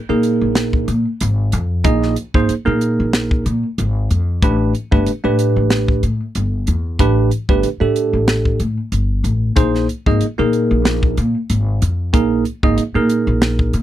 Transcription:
0.09 upright bass A#2, tine electric piano A#3 D#4 G#4 A#4
0.23 closed hi-hat
0.41 upright bass A#1
0.55 snare, closed hi-hat
0.73 kick
0.88 upright bass A#2, closed hi-hat
1.21 upright bass G#1, closed hi-hat
1.52 upright bass F2, closed hi-hat
1.84 upright bass A#1, tine electric piano A#3 D#4 G#4 D#5, kick, closed hi-hat
2.02 snare
2.16 closed hi-hat
2.34 upright bass G#1, tine electric piano A#3 D#4 G#4 C5, kick
2.49 muted upright bass stroke, closed hi-hat
2.65 upright bass A#2, tine electric piano A#3 D#4 G#4 A#4
2.81 closed hi-hat
3.00 upright bass A#1
3.13 snare, closed hi-hat
3.31 kick
3.46 upright bass A#2, closed hi-hat
3.78 upright bass G#1, closed hi-hat
4.10 upright bass F2, closed hi-hat
4.42 upright bass A1, tine electric piano A3 D4 G4 B4, kick, closed hi-hat
4.75 closed hi-hat
4.91 upright bass G1, tine electric piano A3 D4 G4 B4, kick
5.06 muted upright bass stroke, closed hi-hat
5.24 upright bass A2, tine electric piano A3 D4 G4 B4
5.39 closed hi-hat
5.56 upright bass A1
5.70 snare, closed hi-hat
5.88 kick
6.03 upright bass A2, closed hi-hat
6.35 upright bass G1, closed hi-hat
6.67 upright bass E2, closed hi-hat
6.99 upright bass A1, tine electric piano A3 D4 G4 B4, kick, closed hi-hat
7.31 closed hi-hat
7.49 upright bass G1, tine electric piano A3 D4 G4 B4, kick
7.63 muted upright bass stroke, closed hi-hat
7.80 upright bass A2, tine electric piano A3 D4 G4 A4
7.96 closed hi-hat
8.13 upright bass A1
8.28 snare, closed hi-hat
8.45 kick
8.60 upright bass A2, closed hi-hat
8.92 upright bass G1, closed hi-hat
9.24 upright bass A1, closed hi-hat
9.56 upright bass A#1, tine electric piano A#3 D#4 G#4 C5, kick, closed hi-hat
9.75 snare
9.89 closed hi-hat
10.06 upright bass G#1, tine electric piano A#3 D#4 G#4 D#5, kick
10.21 muted upright bass stroke, closed hi-hat
10.38 upright bass A#2, tine electric piano A#3 D#4 G#4 A#4
10.53 closed hi-hat
10.71 upright bass A#1
10.85 snare, closed hi-hat
11.03 kick
11.17 upright bass A#2, closed hi-hat
11.50 upright bass G#1, closed hi-hat
11.82 upright bass F2, closed hi-hat
12.13 upright bass A#1, tine electric piano A#3 D#4 G#4 A#4, kick, closed hi-hat
12.45 closed hi-hat
12.63 upright bass G#1, tine electric piano A#3 D#4 G#4 D#5, kick
12.78 muted upright bass stroke, closed hi-hat
12.95 upright bass A#2, tine electric piano A#3 D#4 G#4 A#4
13.10 closed hi-hat
13.27 upright bass A#1
13.42 snare, closed hi-hat
13.59 kick
13.73 upright bass A#2, closed hi-hat

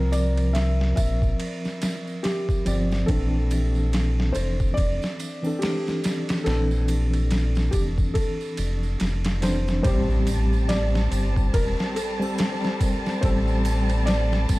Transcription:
Already playing: analog synth bass C2, tine electric piano F3 C4 A#4
0.12 felt piano D5, ride, tambourine, triangle
0.37 ride, tambourine
0.53 felt piano E5, snare, ride, tambourine
0.81 snare
0.96 analog synth bass A#1, felt piano E5, kick, ride, tambourine
1.22 kick, tambourine
1.40 ride, tambourine
1.65 snare, tambourine
1.82 snare, ride, tambourine
2.07 tambourine
2.23 felt piano G4, snare, ride, tambourine
2.49 kick, tambourine
2.66 analog synth bass G1, tine electric piano F3 C4 D5, ride, tambourine
2.91 snare, tambourine
3.06 analog synth bass A#1, tine electric piano E3 C4 D4, felt piano A4, kick, ride, tambourine
3.11 tine electric piano A4
3.51 ride, tambourine, triangle
3.75 tambourine
3.93 snare, ride, tambourine
4.20 snare
4.33 analog synth bass F1, felt piano C5, ride, tambourine
4.60 kick, tambourine
4.74 analog synth bass F1, felt piano D5, kick, ride, tambourine
5.02 snare, tambourine
5.19 ride, tambourine
5.43 tine electric piano E3 C4 D4, tambourine, triangle
5.47 tine electric piano A4
5.59 felt piano G4, ride, tambourine
5.63 snare
5.88 snare, tambourine
6.04 snare, ride, tambourine
6.29 snare, ride, tambourine
6.44 analog synth bass A#1, tine electric piano E3 C4 D4 A4, felt piano A4, snare, ride, tambourine
6.71 tambourine
6.88 ride, tambourine, triangle
7.13 ride, tambourine
7.31 snare, ride, tambourine
7.55 snare, tambourine
7.71 analog synth bass F1, felt piano G4, kick, ride, tambourine
7.98 kick, tambourine
8.14 felt piano A4, kick, ride, tambourine
8.41 tambourine
8.57 analog synth bass F1, ride, tambourine
8.83 tambourine
9.00 analog synth bass F1, snare, ride, tambourine
9.25 snare, ride, tambourine
9.41 tine electric piano E3 C4 D4 C5, snare, ride, tambourine
9.68 snare, tambourine
9.83 analog synth bass A1, tine electric piano G3 C4 G4, violin section G3 C4 A5, felt piano C5, kick, ride, tambourine, impact
10.10 tambourine
10.27 ride, tambourine, triangle
10.53 tambourine
10.69 felt piano D5, snare, ride, tambourine
10.95 snare, tambourine
11.12 analog synth bass G1, ride, tambourine
11.36 kick, tambourine
11.54 analog synth bass E1, felt piano A#4, kick, ride, tambourine
11.79 snare, tambourine
11.95 felt piano A4, ride, tambourine
12.19 tine electric piano G3 C4, tambourine, triangle
12.23 tine electric piano A4
12.38 snare, ride, tambourine
12.64 snare, tambourine
12.81 kick, ride, tambourine
13.06 snare, tambourine
13.21 analog synth bass A1, tine electric piano G3 C4 A4, felt piano C5, kick, ride, tambourine
13.48 tambourine
13.65 ride, tambourine, triangle
13.90 ride, tambourine
14.06 felt piano D5, snare, ride, tambourine
14.32 snare, tambourine
14.49 analog synth bass G1, kick, ride, tambourine

